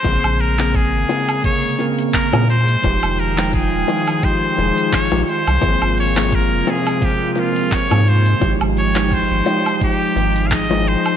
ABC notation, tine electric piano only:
X:1
M:4/4
L:1/16
Q:"Swing 16ths" 1/4=86
K:Fm
V:1 name="Tine electric piano"
[D,B,CA]3 [D,B,CA]3 [D,B,CA]2 [C,D,B,A]2 [D,B,CB]3 [D,B,CA] z2 | [F,A,EG]3 [F,A,Eg]3 [F,A,Eg]2 [F,A,EG]2 [F,A,EA]3 [F,A,EG] z2 | [F,B,CA]3 [F,B,CA]3 [F,B,CA]2 [F,B,CA]2 [F,B,CB]3 [F,B,CA] z2 | [F,A,EG]3 [F,A,EG]3 [F,A,EG]2 [F,A,EG]2 z2 [F,A,EA] [F,A,EA]3 |]